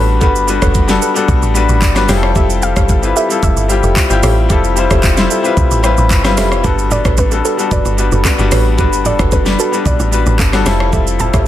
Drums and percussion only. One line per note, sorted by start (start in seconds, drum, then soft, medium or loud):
0.21 kick loud
0.21 shaker medium
0.36 shaker medium
0.48 shaker medium
0.62 kick medium
0.62 cross-stick loud
0.62 shaker medium
0.74 kick loud
0.74 shaker medium
0.89 snare medium
0.89 shaker medium
1.02 shaker medium
1.16 shaker medium
1.28 kick loud
1.28 shaker medium
1.42 shaker medium
1.55 shaker medium
1.69 shaker soft
1.82 kick loud
1.82 clap loud
1.82 shaker medium
1.96 cross-stick loud
1.96 snare medium
1.96 shaker medium
2.09 cross-stick loud
2.09 snare medium
2.09 open hi-hat medium
2.09 shaker medium
2.23 cross-stick loud
2.36 kick loud
2.36 shaker medium
2.50 shaker medium
2.63 shaker medium
2.76 kick medium
2.76 cross-stick loud
2.76 shaker medium
2.89 kick loud
2.89 shaker medium
3.03 shaker medium
3.17 shaker medium
3.30 shaker medium
3.43 kick loud
3.43 shaker medium
3.57 shaker medium
3.70 shaker medium
3.83 shaker soft
3.96 kick loud
3.96 clap loud
3.96 shaker medium
4.10 shaker medium
4.23 cross-stick loud
4.23 open hi-hat medium
4.23 shaker loud
4.50 kick loud
4.50 shaker medium
4.64 shaker medium
4.77 shaker medium
4.91 kick medium
4.91 cross-stick loud
4.91 shaker medium
5.03 kick loud
5.03 clap loud
5.03 shaker medium
5.17 snare medium
5.17 shaker medium
5.31 shaker medium
5.45 shaker medium
5.57 kick loud
5.57 shaker medium
5.71 shaker medium
5.84 cross-stick loud
5.84 shaker medium
5.97 shaker soft
6.11 kick loud
6.11 clap medium
6.11 shaker medium
6.25 cross-stick loud
6.25 snare medium
6.25 shaker medium
6.37 cross-stick loud
6.37 snare medium
6.37 open hi-hat medium
6.37 shaker loud
6.52 cross-stick medium
6.52 shaker soft
6.64 kick loud
6.64 low conga medium
6.64 shaker medium
6.79 shaker medium
6.91 low bongo medium
6.91 low conga medium
6.91 shaker medium
7.05 kick medium
7.05 cross-stick loud
7.05 low bongo medium
7.05 shaker medium
7.17 kick loud
7.17 high bongo medium
7.17 shaker medium
7.32 high bongo medium
7.32 shaker medium
7.45 shaker medium
7.59 shaker medium
7.71 kick loud
7.71 low conga medium
7.71 shaker medium
7.85 low bongo medium
7.85 shaker medium
7.98 shaker medium
8.12 low bongo medium
8.12 shaker soft
8.25 kick loud
8.25 clap loud
8.25 high bongo medium
8.25 shaker medium
8.39 shaker medium
8.52 cross-stick loud
8.52 open hi-hat medium
8.52 shaker medium
8.78 kick loud
8.78 low conga medium
8.78 shaker medium
8.93 shaker medium
9.05 low bongo medium
9.05 low conga medium
9.05 shaker medium
9.19 kick loud
9.19 cross-stick loud
9.19 low bongo medium
9.19 shaker medium
9.32 kick loud
9.32 high bongo medium
9.32 shaker medium
9.46 snare medium
9.46 high bongo medium
9.46 shaker medium
9.59 shaker medium
9.73 shaker medium
9.86 kick loud
9.86 low conga medium
9.86 shaker medium
10.00 low bongo medium
10.00 shaker medium
10.13 shaker medium
10.26 low bongo medium
10.26 shaker soft
10.39 kick loud
10.39 clap loud
10.39 high bongo medium
10.39 shaker medium
10.53 cross-stick loud
10.53 snare medium
10.53 shaker medium
10.66 cross-stick loud
10.66 snare medium
10.66 open hi-hat medium
10.66 shaker medium
10.80 cross-stick loud
10.93 kick loud
10.93 low conga medium
10.93 shaker medium
11.07 shaker medium
11.20 low bongo medium
11.20 low conga medium
11.20 shaker medium
11.34 kick loud
11.34 cross-stick loud
11.34 low bongo medium
11.34 shaker medium